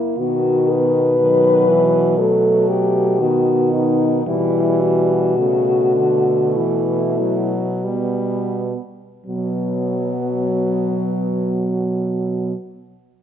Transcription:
Already playing: A#3 E4
0.18 B2 D#3 B3 F#4
0.70 B4
1.19 D#3 F#3
1.68 E3
2.18 F#3 A3 A4
2.69 G4
3.21 D#3 B3 F#4
3.73 D#4
4.26 B2 E3 G3 E4
4.81 F#4
5.38 C#3 A3
5.95 D3
6.55 E3 E4
7.19 F#3
7.85 G3 B3
9.25 B2 F#3 B3

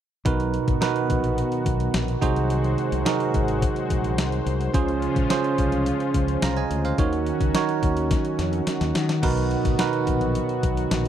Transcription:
0.25 B1 B2 D#3 F#3 B3 D#4 F#4 A#4 B4, kick, closed hi-hat
0.40 closed hi-hat
0.54 closed hi-hat
0.68 G#1, kick, closed hi-hat
0.81 D#4 F#4 A#4 B4, snare, closed hi-hat
0.96 closed hi-hat
1.10 A#1, kick, closed hi-hat
1.24 closed hi-hat
1.38 closed hi-hat
1.52 closed hi-hat
1.66 B1, kick, closed hi-hat
1.80 closed hi-hat
1.94 A#1, snare, closed hi-hat
2.08 closed hi-hat
2.21 C2 C3 G#3 D#4 F#4 G#4 C5, kick, closed hi-hat
2.36 closed hi-hat
2.50 closed hi-hat
2.64 closed hi-hat
2.78 closed hi-hat
2.92 C2, closed hi-hat
3.06 D#4 F#4 G#4 A#4, snare, closed hi-hat
3.20 closed hi-hat
3.34 G#1, kick, closed hi-hat
3.48 closed hi-hat
3.62 kick, closed hi-hat
3.76 closed hi-hat
3.90 A#1, kick, closed hi-hat
4.04 closed hi-hat
4.18 C2, snare, closed hi-hat
4.32 closed hi-hat
4.46 C2, closed hi-hat
4.61 closed hi-hat
4.74 C#2 C#3 F3 G#3 C#4 F4 G#4 C5, kick, closed hi-hat
4.88 closed hi-hat
5.02 closed hi-hat
5.16 A#1, kick, closed hi-hat
5.30 C#4 F4 G#4 C5, snare, closed hi-hat
5.44 closed hi-hat
5.58 C2, kick, closed hi-hat
5.72 closed hi-hat
5.86 closed hi-hat
6.00 closed hi-hat
6.14 C#2, kick, closed hi-hat
6.28 closed hi-hat
6.42 C2 F5 A#5, snare, closed hi-hat
6.57 D#5 G#5, closed hi-hat
6.71 D2, closed hi-hat
6.85 C5 F5, closed hi-hat
6.98 D#2 D#3 F#3 C#4 D#4 F#4 A#4 C#5, kick, closed hi-hat
7.13 closed hi-hat
7.26 closed hi-hat
7.41 C#2, kick, closed hi-hat
7.54 D#4 F#4 A#4 C#5, snare, closed hi-hat
7.69 closed hi-hat
7.83 D#2, kick, closed hi-hat
7.97 closed hi-hat
8.11 kick, snare, closed hi-hat
8.25 closed hi-hat
8.39 F2, snare, closed hi-hat
8.53 closed hi-hat
8.67 muted fretless electric bass stroke, snare, closed hi-hat
8.81 D#2, snare, closed hi-hat
8.95 D#3, snare, closed hi-hat
9.09 snare, closed hi-hat
9.23 B1 B2 B3 D#4 F#4 A#4 B4, kick, crash
9.37 closed hi-hat
9.51 closed hi-hat
9.65 G#1, kick, closed hi-hat
9.79 D#4 F#4 A#4 B4, snare, closed hi-hat
9.93 closed hi-hat
10.07 A#1, kick, closed hi-hat
10.21 closed hi-hat
10.35 closed hi-hat
10.49 closed hi-hat
10.63 B1, kick, closed hi-hat
10.77 closed hi-hat
10.91 A#1, snare, closed hi-hat

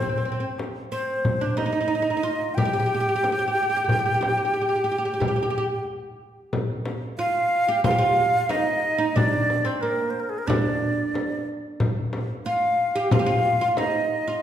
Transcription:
Already playing: C5
0.02 C4
0.09 C4
0.18 C4
0.25 C4
0.32 C4
0.40 C4
0.59 darbuka tek, frame drum
0.75 darbuka ka
0.92 C4 C5
1.25 darbuka dum, frame drum
1.41 D4
1.57 D#4 D#5, darbuka tek, frame drum
1.66 D#4
1.73 D#4
1.81 D#4
1.88 D#4
1.95 D#4
2.02 D#4
2.08 D#4, darbuka ka
2.17 D#4
2.23 F4
2.55 G4 G5, darbuka dum, frame drum
2.65 G4
2.73 G4
2.80 G4
2.86 G4
2.94 G4
3.00 G4
3.09 G4
3.16 G4
3.23 G4, darbuka tek, frame drum
3.32 G4
3.39 G4, darbuka ka
3.48 G4
3.55 G4
3.63 G4
3.70 G4
3.76 G4
3.84 G4, darbuka dum
3.89 G4, frame drum
3.99 G4
4.06 G4
4.14 G4
4.21 G4, darbuka tek, frame drum
4.30 G4
4.37 G4
4.45 G4
4.54 G4
4.61 G4
4.69 G4
4.76 G4
4.84 G4
4.92 G4
4.98 G4
5.05 G4
5.14 G4
5.20 G4, darbuka dum, frame drum
5.28 G4
5.36 G4
5.43 G4
5.50 G4
5.55 G4, darbuka ka
6.53 frame drum, darbuka dum
6.86 frame drum
7.18 F4 F5
7.68 G4
7.84 F4 F5, frame drum, darbuka dum
7.91 G4
7.98 F4
8.18 darbuka ka
8.49 D#4 D#5, darbuka tek, frame drum
8.98 D#4
9.16 D4 D5, darbuka dum, frame drum
9.50 darbuka tek, frame drum
9.65 C4 C5
9.81 A#3 A#4
10.10 C5
10.20 A#4
10.29 G#4
10.38 A#4
10.47 D4 D5, darbuka dum, frame drum
10.82 darbuka ka
11.14 darbuka tek, frame drum
11.80 frame drum, darbuka dum
12.13 darbuka tek, frame drum
12.46 F4 F5
12.96 G4
13.11 F4 F5, frame drum, darbuka dum
13.19 G4
13.26 F4
13.46 darbuka ka
13.61 F4
13.77 D#4 D#5, darbuka tek, frame drum
14.28 F4

